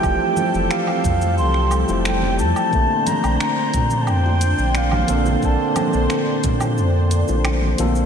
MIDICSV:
0, 0, Header, 1, 7, 480
1, 0, Start_track
1, 0, Tempo, 674157
1, 26, Time_signature, 4, 2, 24, 8
1, 5737, End_track
2, 0, Start_track
2, 0, Title_t, "Synth texture"
2, 0, Program_c, 0, 99
2, 0, Note_on_c, 0, 79, 86
2, 0, Note_on_c, 0, 91, 76
2, 5737, Note_off_c, 0, 79, 0
2, 5737, Note_off_c, 0, 91, 0
2, 5737, End_track
3, 0, Start_track
3, 0, Title_t, "Flute"
3, 0, Program_c, 1, 73
3, 0, Note_on_c, 1, 79, 113
3, 506, Note_on_c, 1, 77, 98
3, 516, Note_off_c, 1, 79, 0
3, 979, Note_off_c, 1, 77, 0
3, 983, Note_on_c, 1, 84, 109
3, 1252, Note_off_c, 1, 84, 0
3, 1471, Note_on_c, 1, 79, 98
3, 1692, Note_off_c, 1, 79, 0
3, 1704, Note_on_c, 1, 81, 111
3, 2188, Note_on_c, 1, 82, 102
3, 2199, Note_off_c, 1, 81, 0
3, 2427, Note_off_c, 1, 82, 0
3, 2434, Note_on_c, 1, 82, 98
3, 2861, Note_on_c, 1, 81, 67
3, 2872, Note_off_c, 1, 82, 0
3, 2915, Note_on_c, 1, 79, 99
3, 2925, Note_off_c, 1, 81, 0
3, 3399, Note_on_c, 1, 77, 97
3, 3410, Note_off_c, 1, 79, 0
3, 3879, Note_on_c, 1, 81, 85
3, 3890, Note_off_c, 1, 77, 0
3, 4353, Note_off_c, 1, 81, 0
3, 5737, End_track
4, 0, Start_track
4, 0, Title_t, "Analog synth pad"
4, 0, Program_c, 2, 89
4, 0, Note_on_c, 2, 55, 74
4, 0, Note_on_c, 2, 60, 72
4, 0, Note_on_c, 2, 67, 72
4, 0, Note_on_c, 2, 69, 82
4, 1918, Note_off_c, 2, 55, 0
4, 1919, Note_off_c, 2, 60, 0
4, 1920, Note_off_c, 2, 67, 0
4, 1922, Note_off_c, 2, 69, 0
4, 1942, Note_on_c, 2, 46, 72
4, 1946, Note_on_c, 2, 62, 89
4, 1946, Note_on_c, 2, 72, 81
4, 5737, Note_off_c, 2, 46, 0
4, 5737, Note_off_c, 2, 62, 0
4, 5737, Note_off_c, 2, 72, 0
4, 5737, End_track
5, 0, Start_track
5, 0, Title_t, "Tine electric piano"
5, 0, Program_c, 3, 4
5, 0, Control_c, 3, 64, 127
5, 0, Note_on_c, 3, 53, 89
5, 0, Note_on_c, 3, 57, 80
5, 0, Note_on_c, 3, 64, 85
5, 0, Note_on_c, 3, 67, 98
5, 10, Note_off_c, 3, 53, 0
5, 10, Note_on_c, 3, 53, 80
5, 22, Note_off_c, 3, 57, 0
5, 22, Note_on_c, 3, 57, 71
5, 31, Note_on_c, 3, 52, 72
5, 40, Note_off_c, 3, 67, 0
5, 40, Note_on_c, 3, 67, 92
5, 1315, Note_off_c, 3, 53, 0
5, 1321, Note_off_c, 3, 57, 0
5, 1325, Note_off_c, 3, 52, 0
5, 1328, Note_on_c, 3, 53, 75
5, 1330, Note_off_c, 3, 67, 0
5, 1339, Note_on_c, 3, 57, 71
5, 1348, Note_off_c, 3, 64, 0
5, 1348, Note_on_c, 3, 64, 73
5, 1360, Note_on_c, 3, 72, 79
5, 1908, Note_off_c, 3, 53, 0
5, 1914, Note_off_c, 3, 57, 0
5, 1918, Note_off_c, 3, 64, 0
5, 1924, Note_off_c, 3, 72, 0
5, 1925, Note_on_c, 3, 50, 75
5, 1937, Note_on_c, 3, 58, 72
5, 1946, Note_on_c, 3, 60, 69
5, 1955, Note_on_c, 3, 57, 88
5, 1956, Control_c, 3, 64, 0
5, 2069, Control_c, 3, 64, 127
5, 3587, Note_off_c, 3, 50, 0
5, 3593, Note_off_c, 3, 58, 0
5, 3598, Note_off_c, 3, 60, 0
5, 3602, Note_off_c, 3, 57, 0
5, 3616, Note_on_c, 3, 50, 92
5, 3621, Note_on_c, 3, 58, 79
5, 3625, Note_on_c, 3, 60, 81
5, 3631, Note_on_c, 3, 69, 101
5, 3832, Note_off_c, 3, 50, 0
5, 3835, Note_off_c, 3, 58, 0
5, 3837, Note_off_c, 3, 60, 0
5, 3840, Note_off_c, 3, 69, 0
5, 3850, Note_on_c, 3, 50, 78
5, 3860, Note_on_c, 3, 58, 78
5, 3872, Note_on_c, 3, 60, 75
5, 3881, Note_on_c, 3, 69, 87
5, 5510, Note_off_c, 3, 50, 0
5, 5514, Note_off_c, 3, 58, 0
5, 5521, Note_off_c, 3, 60, 0
5, 5525, Note_off_c, 3, 69, 0
5, 5542, Note_on_c, 3, 50, 91
5, 5547, Note_on_c, 3, 58, 83
5, 5552, Note_on_c, 3, 60, 78
5, 5556, Note_on_c, 3, 69, 105
5, 5737, Note_off_c, 3, 50, 0
5, 5737, Note_off_c, 3, 58, 0
5, 5737, Note_off_c, 3, 60, 0
5, 5737, Note_off_c, 3, 69, 0
5, 5737, End_track
6, 0, Start_track
6, 0, Title_t, "Sub bass"
6, 0, Program_c, 4, 38
6, 23, Note_on_c, 4, 29, 91
6, 123, Note_off_c, 4, 29, 0
6, 384, Note_on_c, 4, 29, 82
6, 483, Note_off_c, 4, 29, 0
6, 743, Note_on_c, 4, 41, 96
6, 985, Note_on_c, 4, 36, 92
6, 995, Note_off_c, 4, 41, 0
6, 1311, Note_off_c, 4, 36, 0
6, 1343, Note_on_c, 4, 29, 86
6, 1704, Note_on_c, 4, 41, 79
6, 1715, Note_off_c, 4, 29, 0
6, 1804, Note_off_c, 4, 41, 0
6, 1943, Note_on_c, 4, 34, 92
6, 2043, Note_off_c, 4, 34, 0
6, 2304, Note_on_c, 4, 34, 85
6, 2403, Note_off_c, 4, 34, 0
6, 2664, Note_on_c, 4, 46, 98
6, 2904, Note_on_c, 4, 41, 87
6, 2915, Note_off_c, 4, 46, 0
6, 3231, Note_off_c, 4, 41, 0
6, 3263, Note_on_c, 4, 34, 90
6, 3589, Note_off_c, 4, 34, 0
6, 3625, Note_on_c, 4, 34, 94
6, 3822, Note_off_c, 4, 34, 0
6, 3864, Note_on_c, 4, 34, 90
6, 3963, Note_off_c, 4, 34, 0
6, 4228, Note_on_c, 4, 34, 88
6, 4325, Note_off_c, 4, 34, 0
6, 4584, Note_on_c, 4, 46, 102
6, 4828, Note_on_c, 4, 41, 98
6, 4839, Note_off_c, 4, 46, 0
6, 5152, Note_off_c, 4, 41, 0
6, 5189, Note_on_c, 4, 34, 95
6, 5512, Note_off_c, 4, 34, 0
6, 5546, Note_on_c, 4, 34, 92
6, 5737, Note_off_c, 4, 34, 0
6, 5737, End_track
7, 0, Start_track
7, 0, Title_t, "Drums"
7, 24, Note_on_c, 9, 36, 119
7, 24, Note_on_c, 9, 77, 73
7, 24, Note_on_c, 9, 82, 32
7, 95, Note_off_c, 9, 36, 0
7, 95, Note_off_c, 9, 77, 0
7, 96, Note_off_c, 9, 82, 0
7, 258, Note_on_c, 9, 63, 87
7, 260, Note_on_c, 9, 82, 77
7, 330, Note_off_c, 9, 63, 0
7, 332, Note_off_c, 9, 82, 0
7, 385, Note_on_c, 9, 82, 41
7, 457, Note_off_c, 9, 82, 0
7, 503, Note_on_c, 9, 26, 94
7, 503, Note_on_c, 9, 82, 30
7, 574, Note_off_c, 9, 26, 0
7, 574, Note_off_c, 9, 82, 0
7, 623, Note_on_c, 9, 77, 71
7, 694, Note_off_c, 9, 77, 0
7, 740, Note_on_c, 9, 64, 72
7, 743, Note_on_c, 9, 36, 104
7, 744, Note_on_c, 9, 82, 79
7, 811, Note_off_c, 9, 64, 0
7, 814, Note_off_c, 9, 36, 0
7, 815, Note_off_c, 9, 82, 0
7, 865, Note_on_c, 9, 82, 42
7, 870, Note_on_c, 9, 63, 53
7, 936, Note_off_c, 9, 82, 0
7, 941, Note_off_c, 9, 63, 0
7, 981, Note_on_c, 9, 82, 31
7, 1053, Note_off_c, 9, 82, 0
7, 1099, Note_on_c, 9, 26, 28
7, 1170, Note_off_c, 9, 26, 0
7, 1218, Note_on_c, 9, 77, 75
7, 1218, Note_on_c, 9, 82, 72
7, 1289, Note_off_c, 9, 77, 0
7, 1290, Note_off_c, 9, 82, 0
7, 1342, Note_on_c, 9, 82, 44
7, 1413, Note_off_c, 9, 82, 0
7, 1462, Note_on_c, 9, 26, 93
7, 1462, Note_on_c, 9, 82, 36
7, 1533, Note_off_c, 9, 26, 0
7, 1534, Note_off_c, 9, 82, 0
7, 1582, Note_on_c, 9, 63, 92
7, 1653, Note_off_c, 9, 63, 0
7, 1701, Note_on_c, 9, 82, 73
7, 1772, Note_off_c, 9, 82, 0
7, 1824, Note_on_c, 9, 77, 75
7, 1824, Note_on_c, 9, 82, 45
7, 1895, Note_off_c, 9, 77, 0
7, 1896, Note_off_c, 9, 82, 0
7, 1941, Note_on_c, 9, 82, 33
7, 1942, Note_on_c, 9, 36, 114
7, 2012, Note_off_c, 9, 82, 0
7, 2014, Note_off_c, 9, 36, 0
7, 2183, Note_on_c, 9, 42, 84
7, 2183, Note_on_c, 9, 82, 71
7, 2184, Note_on_c, 9, 63, 83
7, 2254, Note_off_c, 9, 42, 0
7, 2255, Note_off_c, 9, 63, 0
7, 2255, Note_off_c, 9, 82, 0
7, 2305, Note_on_c, 9, 77, 76
7, 2306, Note_on_c, 9, 82, 39
7, 2376, Note_off_c, 9, 77, 0
7, 2377, Note_off_c, 9, 82, 0
7, 2424, Note_on_c, 9, 26, 93
7, 2425, Note_on_c, 9, 82, 33
7, 2495, Note_off_c, 9, 26, 0
7, 2496, Note_off_c, 9, 82, 0
7, 2660, Note_on_c, 9, 42, 78
7, 2660, Note_on_c, 9, 82, 72
7, 2663, Note_on_c, 9, 36, 107
7, 2663, Note_on_c, 9, 64, 66
7, 2731, Note_off_c, 9, 42, 0
7, 2731, Note_off_c, 9, 82, 0
7, 2734, Note_off_c, 9, 36, 0
7, 2734, Note_off_c, 9, 64, 0
7, 2779, Note_on_c, 9, 82, 43
7, 2781, Note_on_c, 9, 63, 57
7, 2850, Note_off_c, 9, 82, 0
7, 2852, Note_off_c, 9, 63, 0
7, 2898, Note_on_c, 9, 77, 70
7, 2899, Note_on_c, 9, 82, 31
7, 2970, Note_off_c, 9, 77, 0
7, 2970, Note_off_c, 9, 82, 0
7, 3032, Note_on_c, 9, 60, 47
7, 3103, Note_off_c, 9, 60, 0
7, 3141, Note_on_c, 9, 42, 81
7, 3141, Note_on_c, 9, 82, 75
7, 3212, Note_off_c, 9, 42, 0
7, 3212, Note_off_c, 9, 82, 0
7, 3263, Note_on_c, 9, 82, 42
7, 3335, Note_off_c, 9, 82, 0
7, 3379, Note_on_c, 9, 26, 93
7, 3380, Note_on_c, 9, 82, 33
7, 3450, Note_off_c, 9, 26, 0
7, 3451, Note_off_c, 9, 82, 0
7, 3499, Note_on_c, 9, 77, 71
7, 3503, Note_on_c, 9, 64, 72
7, 3504, Note_on_c, 9, 63, 80
7, 3570, Note_off_c, 9, 77, 0
7, 3574, Note_off_c, 9, 64, 0
7, 3575, Note_off_c, 9, 63, 0
7, 3618, Note_on_c, 9, 42, 75
7, 3619, Note_on_c, 9, 82, 74
7, 3690, Note_off_c, 9, 42, 0
7, 3690, Note_off_c, 9, 82, 0
7, 3742, Note_on_c, 9, 82, 45
7, 3743, Note_on_c, 9, 60, 49
7, 3750, Note_on_c, 9, 64, 81
7, 3814, Note_off_c, 9, 82, 0
7, 3815, Note_off_c, 9, 60, 0
7, 3821, Note_off_c, 9, 64, 0
7, 3861, Note_on_c, 9, 82, 31
7, 3864, Note_on_c, 9, 36, 107
7, 3932, Note_off_c, 9, 82, 0
7, 3935, Note_off_c, 9, 36, 0
7, 4099, Note_on_c, 9, 63, 89
7, 4100, Note_on_c, 9, 42, 88
7, 4100, Note_on_c, 9, 77, 79
7, 4100, Note_on_c, 9, 82, 71
7, 4171, Note_off_c, 9, 42, 0
7, 4171, Note_off_c, 9, 63, 0
7, 4171, Note_off_c, 9, 77, 0
7, 4171, Note_off_c, 9, 82, 0
7, 4224, Note_on_c, 9, 82, 39
7, 4295, Note_off_c, 9, 82, 0
7, 4343, Note_on_c, 9, 26, 96
7, 4343, Note_on_c, 9, 82, 30
7, 4414, Note_off_c, 9, 26, 0
7, 4414, Note_off_c, 9, 82, 0
7, 4582, Note_on_c, 9, 42, 87
7, 4583, Note_on_c, 9, 82, 70
7, 4585, Note_on_c, 9, 36, 99
7, 4588, Note_on_c, 9, 64, 73
7, 4653, Note_off_c, 9, 42, 0
7, 4654, Note_off_c, 9, 82, 0
7, 4656, Note_off_c, 9, 36, 0
7, 4659, Note_off_c, 9, 64, 0
7, 4703, Note_on_c, 9, 60, 52
7, 4703, Note_on_c, 9, 63, 57
7, 4703, Note_on_c, 9, 77, 80
7, 4703, Note_on_c, 9, 82, 42
7, 4774, Note_off_c, 9, 60, 0
7, 4774, Note_off_c, 9, 77, 0
7, 4775, Note_off_c, 9, 63, 0
7, 4775, Note_off_c, 9, 82, 0
7, 4825, Note_on_c, 9, 82, 30
7, 4897, Note_off_c, 9, 82, 0
7, 5063, Note_on_c, 9, 42, 83
7, 5063, Note_on_c, 9, 82, 71
7, 5134, Note_off_c, 9, 42, 0
7, 5134, Note_off_c, 9, 82, 0
7, 5183, Note_on_c, 9, 82, 40
7, 5190, Note_on_c, 9, 60, 61
7, 5254, Note_off_c, 9, 82, 0
7, 5261, Note_off_c, 9, 60, 0
7, 5301, Note_on_c, 9, 26, 100
7, 5301, Note_on_c, 9, 77, 82
7, 5302, Note_on_c, 9, 82, 32
7, 5373, Note_off_c, 9, 26, 0
7, 5373, Note_off_c, 9, 77, 0
7, 5373, Note_off_c, 9, 82, 0
7, 5423, Note_on_c, 9, 63, 81
7, 5494, Note_off_c, 9, 63, 0
7, 5542, Note_on_c, 9, 42, 84
7, 5543, Note_on_c, 9, 82, 73
7, 5549, Note_on_c, 9, 60, 60
7, 5613, Note_off_c, 9, 42, 0
7, 5614, Note_off_c, 9, 82, 0
7, 5621, Note_off_c, 9, 60, 0
7, 5662, Note_on_c, 9, 82, 41
7, 5733, Note_off_c, 9, 82, 0
7, 5737, End_track
0, 0, End_of_file